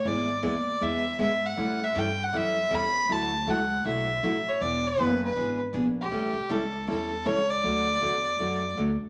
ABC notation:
X:1
M:4/4
L:1/16
Q:"Swing" 1/4=158
K:D
V:1 name="Fiddle"
d4 d4 e4 e2 f2- | f2 e2 g2 f2 e4 b4 | a4 f4 e6 c2 | d2 B4 B4 z4 G2- |
G4 A4 A4 c2 d2- | d12 z4 |]
V:2 name="Steel-string acoustic guitar"
[E,^G,B,E^G]2 z2 [E,G,B,EG] z3 [E,G,B,EG]2 z2 [E,G,B,EG] z3 | [E,G,CEA]2 z2 [E,G,CEA] z3 [E,G,CEA]2 z2 [E,G,CEA] z3 | [D,F,A,EF]2 z2 [D,F,A,EF] z3 [D,F,A,EF]2 z2 [D,F,A,EF] z3 | [E,B,D^G]2 z2 [E,B,DG] z3 [E,B,DG]2 z2 [E,B,DG] z3 |
[E,G,CEA]2 z2 [E,G,CEA] z3 [E,G,CEA]2 z2 [E,G,CEA] z3 | [D,F,A,DF]2 z2 [D,F,A,DF] z3 [D,F,A,DF]2 z2 [D,F,A,DF] z3 |]
V:3 name="Upright bass" clef=bass
^G,,,4 _E,,4 =E,,4 ^G,,4 | A,,4 G,,4 F,,4 E,,4 | D,,4 C,,4 B,,,4 A,,,4 | E,,,4 F,,,4 ^G,,,4 _B,,,4 |
A,,,2 z2 C,,4 E,,4 C,,4 | D,,4 E,,4 F,,4 D,,2 z2 |]